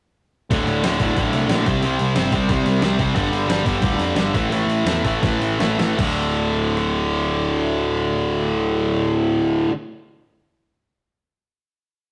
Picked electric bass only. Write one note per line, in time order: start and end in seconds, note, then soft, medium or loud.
0.50 0.65 D1 medium
0.66 0.81 D1 medium
0.84 0.98 D1 medium
1.00 1.15 D1 medium
1.16 1.31 A1 medium
1.33 1.47 C2 medium
1.49 1.64 A#1 medium
1.66 1.81 C2 medium
1.83 1.97 C2 medium
2.01 2.14 C2 medium
2.17 2.31 G1 medium
2.32 2.47 C2 medium
2.49 2.63 C2 loud
2.66 2.80 C2 medium
2.83 2.97 C2 medium
3.00 3.14 C2 medium
3.16 3.30 G1 medium
3.32 3.46 G1 medium
3.48 3.63 G1 medium
3.65 3.80 G1 medium
3.82 3.97 D1 medium
3.99 4.14 F2 medium
4.16 4.31 G1 medium
4.34 4.49 A1 medium
4.50 4.65 A1 medium
4.67 4.83 A1 medium
4.85 5.01 E2 medium
5.04 5.20 A1 medium
5.22 5.38 A1 medium
5.40 5.57 A1 medium
5.60 5.76 A1 medium
5.79 5.96 A1 medium
5.99 9.66 D1 medium